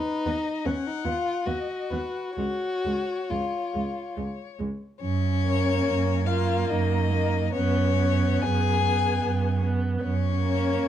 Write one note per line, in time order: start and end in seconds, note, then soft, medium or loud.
0.00 0.67 D#4 medium
0.00 0.29 B4 medium
0.26 0.34 D#2 soft
0.26 0.34 B3 soft
0.26 0.67 D#5 medium
0.65 0.74 D#2 soft
0.65 0.73 B3 soft
0.65 0.88 C#4 medium
0.65 1.48 F#5 medium
0.87 1.06 D#4 medium
1.05 1.14 D#2 soft
1.05 1.14 B3 soft
1.05 1.47 F4 medium
1.45 1.55 D#2 soft
1.45 1.54 B3 soft
1.45 2.35 F#4 medium
1.45 1.91 D#5 soft
1.90 1.99 D#2 soft
1.90 2.00 B3 soft
1.90 2.37 B4 soft
2.36 2.46 C#2 soft
2.36 2.45 G#3 soft
2.36 3.31 F#4 medium
2.36 4.55 C#5 soft
2.84 2.93 C#2 soft
2.84 2.92 G#3 soft
3.30 3.39 C#2 soft
3.30 3.38 G#3 soft
3.30 4.16 F4 soft
3.74 3.83 C#2 soft
3.74 3.82 G#3 soft
4.16 4.26 C#2 soft
4.16 4.24 G#3 soft
4.59 4.68 C#2 soft
4.59 4.67 G#3 soft
5.01 5.76 F#2 medium
5.01 6.23 C#4 medium
5.01 6.28 C#5 medium
5.45 6.26 A#3 soft
5.87 6.60 F#2 medium
6.26 7.09 A#3 medium
6.26 6.72 F4 medium
6.26 6.71 F5 medium
6.70 7.43 F#2 medium
6.70 7.54 D#4 medium
6.70 7.53 D#5 medium
7.11 7.51 A#3 soft
7.52 8.33 F#2 medium
7.52 7.96 B3 medium
7.52 8.45 C#4 medium
7.52 8.44 C#5 medium
7.98 8.82 B3 soft
8.42 9.14 F#2 medium
8.42 9.64 G#4 medium
8.42 9.63 G#5 medium
8.84 9.62 B3 soft
9.24 9.94 F#2 medium
9.63 10.02 B3 medium
10.03 10.72 F#2 medium
10.03 10.88 C#4 medium
10.03 10.88 C#5 medium
10.42 10.88 A#3 medium
10.82 10.88 F#2 medium